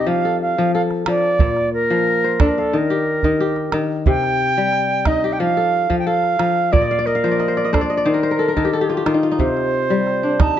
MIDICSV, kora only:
0, 0, Header, 1, 2, 480
1, 0, Start_track
1, 0, Tempo, 667408
1, 1005, Time_signature, 4, 2, 24, 8
1, 7622, End_track
2, 0, Start_track
2, 0, Title_t, "Kora"
2, 0, Program_c, 0, 46
2, 0, Note_on_c, 0, 48, 79
2, 0, Note_on_c, 0, 55, 66
2, 0, Note_on_c, 0, 60, 55
2, 0, Note_on_c, 0, 63, 75
2, 0, Note_on_c, 0, 67, 60
2, 47, Note_on_c, 0, 53, 77
2, 81, Note_off_c, 0, 48, 0
2, 81, Note_off_c, 0, 55, 0
2, 179, Note_on_c, 0, 69, 57
2, 411, Note_off_c, 0, 53, 0
2, 420, Note_on_c, 0, 53, 72
2, 534, Note_off_c, 0, 69, 0
2, 537, Note_on_c, 0, 69, 61
2, 764, Note_off_c, 0, 53, 0
2, 773, Note_on_c, 0, 53, 70
2, 955, Note_off_c, 0, 67, 0
2, 980, Note_off_c, 0, 63, 0
2, 989, Note_off_c, 0, 60, 0
2, 1007, Note_on_c, 0, 46, 77
2, 1041, Note_off_c, 0, 53, 0
2, 1050, Note_off_c, 0, 69, 0
2, 1369, Note_on_c, 0, 53, 68
2, 1613, Note_on_c, 0, 72, 54
2, 1728, Note_on_c, 0, 62, 74
2, 1855, Note_on_c, 0, 77, 58
2, 1967, Note_on_c, 0, 51, 74
2, 2001, Note_off_c, 0, 46, 0
2, 2001, Note_off_c, 0, 53, 0
2, 2010, Note_off_c, 0, 62, 0
2, 2087, Note_on_c, 0, 67, 62
2, 2323, Note_off_c, 0, 51, 0
2, 2332, Note_on_c, 0, 51, 74
2, 2446, Note_off_c, 0, 67, 0
2, 2449, Note_on_c, 0, 67, 61
2, 2467, Note_off_c, 0, 72, 0
2, 2573, Note_off_c, 0, 77, 0
2, 2675, Note_off_c, 0, 51, 0
2, 2684, Note_on_c, 0, 51, 73
2, 2925, Note_on_c, 0, 48, 79
2, 2961, Note_off_c, 0, 51, 0
2, 3290, Note_on_c, 0, 55, 67
2, 3464, Note_off_c, 0, 67, 0
2, 3643, Note_on_c, 0, 63, 74
2, 3768, Note_on_c, 0, 67, 63
2, 3884, Note_on_c, 0, 53, 80
2, 3920, Note_off_c, 0, 48, 0
2, 3920, Note_off_c, 0, 55, 0
2, 4006, Note_on_c, 0, 69, 58
2, 4233, Note_off_c, 0, 53, 0
2, 4242, Note_on_c, 0, 53, 73
2, 4360, Note_off_c, 0, 69, 0
2, 4363, Note_on_c, 0, 69, 64
2, 4590, Note_off_c, 0, 53, 0
2, 4599, Note_on_c, 0, 53, 68
2, 4784, Note_off_c, 0, 67, 0
2, 4810, Note_off_c, 0, 63, 0
2, 4837, Note_on_c, 0, 74, 63
2, 4838, Note_on_c, 0, 46, 75
2, 4879, Note_off_c, 0, 53, 0
2, 4881, Note_off_c, 0, 69, 0
2, 4901, Note_on_c, 0, 75, 60
2, 4969, Note_on_c, 0, 77, 67
2, 5022, Note_off_c, 0, 74, 0
2, 5025, Note_on_c, 0, 74, 68
2, 5068, Note_off_c, 0, 75, 0
2, 5083, Note_on_c, 0, 75, 69
2, 5139, Note_off_c, 0, 77, 0
2, 5142, Note_on_c, 0, 77, 70
2, 5206, Note_on_c, 0, 53, 67
2, 5206, Note_on_c, 0, 72, 61
2, 5258, Note_off_c, 0, 74, 0
2, 5261, Note_on_c, 0, 74, 61
2, 5304, Note_off_c, 0, 75, 0
2, 5319, Note_on_c, 0, 75, 64
2, 5377, Note_off_c, 0, 72, 0
2, 5380, Note_on_c, 0, 72, 60
2, 5441, Note_off_c, 0, 74, 0
2, 5444, Note_on_c, 0, 74, 63
2, 5487, Note_off_c, 0, 75, 0
2, 5499, Note_on_c, 0, 75, 61
2, 5555, Note_off_c, 0, 72, 0
2, 5558, Note_on_c, 0, 62, 73
2, 5558, Note_on_c, 0, 72, 66
2, 5615, Note_off_c, 0, 74, 0
2, 5618, Note_on_c, 0, 74, 65
2, 5661, Note_off_c, 0, 75, 0
2, 5680, Note_on_c, 0, 75, 63
2, 5732, Note_off_c, 0, 74, 0
2, 5735, Note_on_c, 0, 74, 65
2, 5792, Note_off_c, 0, 72, 0
2, 5793, Note_on_c, 0, 51, 80
2, 5794, Note_on_c, 0, 72, 63
2, 5837, Note_off_c, 0, 62, 0
2, 5839, Note_off_c, 0, 46, 0
2, 5839, Note_off_c, 0, 53, 0
2, 5854, Note_on_c, 0, 70, 66
2, 5860, Note_off_c, 0, 77, 0
2, 5917, Note_off_c, 0, 72, 0
2, 5920, Note_on_c, 0, 72, 66
2, 5975, Note_off_c, 0, 70, 0
2, 5978, Note_on_c, 0, 70, 63
2, 6034, Note_on_c, 0, 69, 63
2, 6098, Note_off_c, 0, 70, 0
2, 6101, Note_on_c, 0, 70, 62
2, 6153, Note_off_c, 0, 51, 0
2, 6158, Note_off_c, 0, 69, 0
2, 6161, Note_on_c, 0, 51, 69
2, 6161, Note_on_c, 0, 69, 62
2, 6204, Note_off_c, 0, 74, 0
2, 6219, Note_on_c, 0, 67, 63
2, 6278, Note_off_c, 0, 69, 0
2, 6281, Note_on_c, 0, 69, 65
2, 6324, Note_off_c, 0, 70, 0
2, 6335, Note_off_c, 0, 67, 0
2, 6337, Note_on_c, 0, 67, 68
2, 6397, Note_on_c, 0, 65, 64
2, 6448, Note_off_c, 0, 67, 0
2, 6450, Note_off_c, 0, 75, 0
2, 6451, Note_on_c, 0, 67, 64
2, 6508, Note_off_c, 0, 51, 0
2, 6514, Note_off_c, 0, 65, 0
2, 6516, Note_on_c, 0, 51, 70
2, 6516, Note_on_c, 0, 65, 62
2, 6574, Note_on_c, 0, 63, 65
2, 6635, Note_off_c, 0, 65, 0
2, 6638, Note_on_c, 0, 65, 63
2, 6697, Note_off_c, 0, 63, 0
2, 6699, Note_on_c, 0, 63, 65
2, 6758, Note_on_c, 0, 48, 74
2, 6774, Note_off_c, 0, 72, 0
2, 6799, Note_off_c, 0, 51, 0
2, 7122, Note_on_c, 0, 55, 66
2, 7228, Note_off_c, 0, 69, 0
2, 7359, Note_on_c, 0, 62, 56
2, 7402, Note_off_c, 0, 63, 0
2, 7467, Note_off_c, 0, 67, 0
2, 7479, Note_on_c, 0, 63, 76
2, 7622, Note_off_c, 0, 48, 0
2, 7622, Note_off_c, 0, 55, 0
2, 7622, Note_off_c, 0, 62, 0
2, 7622, Note_off_c, 0, 63, 0
2, 7622, Note_off_c, 0, 65, 0
2, 7622, End_track
0, 0, End_of_file